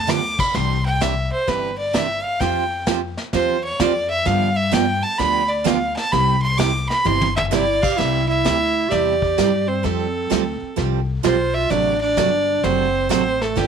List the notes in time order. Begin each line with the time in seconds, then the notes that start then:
Already playing: D2 A5
0.07 D3 F3 B3 D4 G4 D6, snare, hi-hat pedal
0.39 B5, kick, crash
0.54 C2 C3 E3 D4 G4 C6, brush sweep, kick, snare
0.86 G5
1.01 C3 E3 D4 G4 E5, kick, snare, hi-hat pedal
1.32 C5
1.47 G1 C3 E3 D4 G4 B4, brush sweep, kick, snare
1.78 D5
1.93 C3 E3 D4 G4 E5, kick, snare, hi-hat pedal
2.24 F5
2.40 F2 F3 C4 F4 G4 C5 G5, brush sweep, kick, snare
2.87 F3 C4 F4 G4 C5, kick, snare, hi-hat pedal
3.17 snare
3.33 E2 F3 C4 F4 G4 C5, brush sweep, kick, snare
3.64 C#5
3.80 F2 F3 C4 F4 G4 C5 D5, kick, snare, hi-hat pedal
4.10 E5
4.25 G2 D3 F3 B3 D4 G4 F5, brush sweep, kick, snare
4.56 E5
4.71 D3 F3 B3 D4 G4 G5, kick, snare, hi-hat pedal
5.03 A5
5.18 D2 D3 F3 B3 D4 G4 B5, brush sweep, kick, snare
5.48 D5
5.64 D3 F3 B3 D4 G4 F5, kick, snare, hi-hat pedal
5.96 A5, snare
6.12 C2 C3 G3 C4 E4 G4 B5, brush sweep, kick, snare
6.42 C6
6.58 C3 G3 C4 E4 G4 D6, kick, snare, hi-hat pedal
6.89 B5, snare
7.04 G1 C3 G3 C4 E4 G4 C6, high tom
7.21 high tom
7.36 E5, floor tom
7.51 C3 G3 C4 E4 G4 D5, snare, hi-hat pedal
7.82 G4 F5, kick, crash
7.97 C2 C3 G3 C4 E4 G4 E5, brush sweep, kick, snare
8.27 E4 E5
8.45 D2 C3 G3 C4 E4 G4, kick, snare, hi-hat pedal
8.89 E2 C3 G3 C4 E4 G4 D5, brush sweep, kick, snare
9.22 kick
9.38 G2 C3 G3 C4 E4 G4, kick, snare, hi-hat pedal
9.68 C4 C5
9.83 F2 F3 G3 C4 G4 A4, brush sweep, kick, snare
10.30 D2 F3 G3 C4 G4 A4, kick, snare, hi-hat pedal
10.61 muted upright bass stroke
10.76 C2 F3 G3 C4 G4 A4, brush sweep, kick, snare
11.23 B1 F3 G3 C4 F4 G4 A4 C5, kick, snare, hi-hat pedal
11.54 F4 E5
11.70 A1 C3 F#3 A3 D4 F#4 D5, brush sweep, kick, snare
12.01 D4 D5
12.17 G1 C3 F#3 A3 D4 F#4, kick, snare, hi-hat pedal
12.64 F#1 C3 F#3 A3 C4 D4 F#4 C5, brush sweep, kick, snare
13.09 A1 C3 F#3 A3 C4 D4 F#4 C5, kick, snare, hi-hat pedal
13.41 A3 A4, snare
13.56 G1 D3 F3 B3 D4 G4, brush sweep, kick, snare